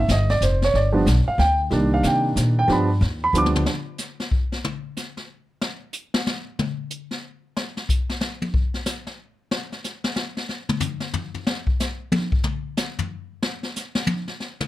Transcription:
0.08 upright bass G1, grand piano D#5, kick, snare, hi-hat pedal
0.29 grand piano D5, snare
0.41 upright bass F1, grand piano C5, kick, snare, hi-hat pedal
0.62 grand piano C#5, snare
0.74 upright bass G1, grand piano D5, brush sweep, kick, snare
0.92 grand piano F3 G3 B3 D4
1.06 upright bass B1, kick, snare, hi-hat pedal
1.28 grand piano F5
1.38 upright bass D2, grand piano G5, kick, snare
1.70 upright bass C2, grand piano D#3 G3 A#3 D4, brush sweep, kick, snare
1.94 grand piano F5
2.03 upright bass C3, grand piano G5, kick, snare, hi-hat pedal
2.36 upright bass A#2, kick, snare, hi-hat pedal
2.59 grand piano G5
2.68 upright bass G2, grand piano F3 G3 B3 D4, brush sweep, kick, snare
2.72 grand piano B5
3.01 upright bass D#2, kick, snare
3.24 grand piano B5
3.33 upright bass D2, grand piano F3 G3 B3 D4, hi-hat pedal, mid tom
3.38 grand piano D6
3.46 mid tom
3.56 mid tom
3.66 snare
3.98 snare, hi-hat pedal
4.20 snare
4.31 kick
4.52 snare
4.64 mid tom
4.96 snare, hi-hat pedal
5.17 snare
5.61 snare
5.93 hi-hat pedal
6.14 snare
6.27 snare
6.59 mid tom
6.90 hi-hat pedal
7.11 snare
7.57 snare
7.77 snare
7.89 kick, hi-hat pedal
8.09 snare
8.21 snare
8.42 high tom
8.54 kick
8.74 snare
8.86 snare, hi-hat pedal
9.07 snare
9.51 snare
9.72 snare
9.84 snare, hi-hat pedal
10.04 snare
10.16 snare
10.37 snare
10.49 snare
10.69 mid tom
10.80 floor tom, hi-hat pedal
11.00 snare
11.13 floor tom
11.34 floor tom
11.47 snare
11.67 kick
11.80 snare, hi-hat pedal
12.12 high tom
12.32 kick
12.44 mid tom
12.77 snare, hi-hat pedal
12.99 floor tom
13.42 snare
13.63 snare
13.76 snare, hi-hat pedal
13.95 snare
14.07 high tom
14.28 snare
14.40 snare
14.61 mid tom

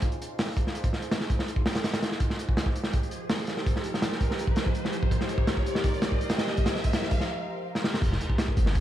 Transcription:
Already playing: ambient pad D#4 F4 G#4 C5, riser
0.02 kick, closed hi-hat
0.12 closed hi-hat
0.22 closed hi-hat
0.39 snare, open hi-hat
0.57 kick, closed hi-hat
0.67 snare
0.75 closed hi-hat
0.84 kick, closed hi-hat
0.93 snare
1.02 closed hi-hat
1.11 snare, closed hi-hat
1.21 snare
1.30 kick, closed hi-hat
1.39 snare
1.48 closed hi-hat
1.56 kick
1.66 snare, closed hi-hat
1.75 snare, closed hi-hat
1.84 snare, closed hi-hat
1.93 snare, closed hi-hat
2.02 snare, closed hi-hat
2.11 snare
2.20 ambient pad F3 D#4 G4 A#4 C5, kick, closed hi-hat
2.30 snare
2.39 closed hi-hat
2.49 kick
2.57 snare, closed hi-hat
2.66 kick
2.75 closed hi-hat
2.84 snare
2.93 kick, closed hi-hat
3.03 closed hi-hat
3.11 closed hi-hat
3.30 snare, open hi-hat
3.47 snare, closed hi-hat
3.57 snare
3.66 kick, closed hi-hat
3.76 snare
3.84 closed hi-hat
3.94 snare
4.02 snare, closed hi-hat
4.12 snare
4.21 kick, closed hi-hat
4.31 snare
4.39 closed hi-hat
4.47 kick
4.56 snare, closed hi-hat
4.66 kick
4.75 closed hi-hat
4.85 snare
4.93 closed hi-hat
5.03 kick
5.11 kick, closed hi-hat
5.21 snare
5.29 closed hi-hat
5.38 kick
5.47 snare, closed hi-hat
5.57 kick
5.66 closed hi-hat
5.75 snare
5.84 kick, closed hi-hat
5.94 closed hi-hat
6.02 snare, closed hi-hat
6.12 kick
6.21 closed hi-hat
6.29 snare, closed hi-hat
6.38 snare, closed hi-hat
6.47 snare
6.57 kick, closed hi-hat
6.66 snare, closed hi-hat
6.76 snare
6.84 kick, closed hi-hat
6.93 snare, closed hi-hat
7.02 snare
7.11 kick, closed hi-hat
7.20 snare
7.75 snare
7.84 snare
7.94 snare
8.02 808-style bass F1, ambient pad D#4 F4 G#4 C5, kick, closed hi-hat, crash, sub drop
8.12 snare
8.20 closed hi-hat
8.30 kick
8.38 snare, closed hi-hat
8.48 kick
8.57 808-style bass G1, closed hi-hat
8.66 snare
8.75 kick, closed hi-hat

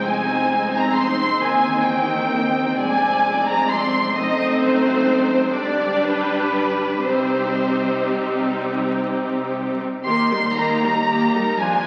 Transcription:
Already playing: double bass section F1, cello section F2, viola section G#3 C4, violin section D#4 C5
0.07 violin section G#5
0.77 violin section A#5
0.96 violin section C6
1.41 cello section D#2, double bass section D#2, viola section D#3, violin section G#5
1.87 violin section G5
2.77 double bass section F1, cello section F2, viola section G#3, violin section D4 D5 G#5
3.48 violin section A#5
3.70 violin section C6
4.16 double bass section F#1, cello section F#2, viola section A3 C4, violin section D#4 C5 D#5
4.62 violin section C5
5.54 double bass section G1, cello section G2, viola section G3 D4, violin section D4 G4 D5
6.04 violin section B4
7.03 double bass section C2, cello section C3, viola section G3 C4, violin section D#4 G4 C5
10.05 cello section D#2, double bass section D#2, viola section D#3 A#3, violin section G4 C6
10.31 viola section G3, violin section D#4 A#4
10.57 viola section D#3 A#3, violin section G4 A#5
10.83 viola section G3, violin section D#4 A#4
11.09 viola section D#3 A#3, violin section G4
11.35 viola section G3, violin section D#4 A#4
11.59 double bass section F1, cello section F2, viola section F3 D4, violin section F4 G#5

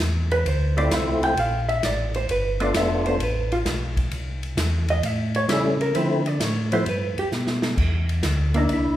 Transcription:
0.00 tonewheel organ E2, snare, hi-hat pedal, ride
0.31 hollow-body jazz guitar B4, ride
0.46 tonewheel organ D2, hollow-body jazz guitar C5, ride
0.77 tonewheel organ A3 C4 E4 F4, hollow-body jazz guitar D5, ride
0.91 tonewheel organ C2, hollow-body jazz guitar E5, snare, hi-hat pedal, ride
1.23 hollow-body jazz guitar G5, ride
1.37 tonewheel organ A#1, hollow-body jazz guitar F5, ride
1.69 hollow-body jazz guitar E5, ride
1.83 tonewheel organ A1, hollow-body jazz guitar D5, snare, hi-hat pedal, ride
2.14 hollow-body jazz guitar C5, ride
2.29 tonewheel organ G1, hollow-body jazz guitar B4, ride
2.60 tonewheel organ A3 B3 D4 F4, hollow-body jazz guitar D5, ride
2.74 tonewheel organ F1, hollow-body jazz guitar E5, snare, hi-hat pedal, ride
3.06 hollow-body jazz guitar C5, ride
3.19 tonewheel organ A1, hollow-body jazz guitar B4, ride
3.52 hollow-body jazz guitar F4, ride
3.65 tonewheel organ B1, snare, hi-hat pedal, ride
3.97 kick, ride
4.11 tonewheel organ C2, ride
4.43 ride
4.57 tonewheel organ E2, snare, hi-hat pedal, ride
4.88 hollow-body jazz guitar D#5, ride
5.03 tonewheel organ A2, hollow-body jazz guitar E5, ride
5.35 hollow-body jazz guitar C#5, ride
5.48 tonewheel organ C#3 G3 A3 C#4 E4, hollow-body jazz guitar A4, snare, hi-hat pedal, ride
5.81 hollow-body jazz guitar A#4, ride
5.95 tonewheel organ D3 F3 A3 C4 E4, hollow-body jazz guitar C5, ride
6.26 hollow-body jazz guitar D5, ride
6.40 tonewheel organ A2, hollow-body jazz guitar C#5, snare, hi-hat pedal, ride
6.72 tonewheel organ F3 A3 B3 E4, hollow-body jazz guitar C5, ride
6.86 tonewheel organ G2, hollow-body jazz guitar B4, ride
7.17 tonewheel organ G2, hollow-body jazz guitar G4, ride
7.32 tonewheel organ B2, snare, hi-hat pedal
7.47 snare
7.62 snare
7.77 tonewheel organ E2, kick, crash
8.09 ride
8.23 tonewheel organ D2, snare, hi-hat pedal, ride
8.54 hollow-body jazz guitar A#3 D4 E4, tonewheel organ D#4, ride
8.69 tonewheel organ C2, ride
8.73 tonewheel organ E4

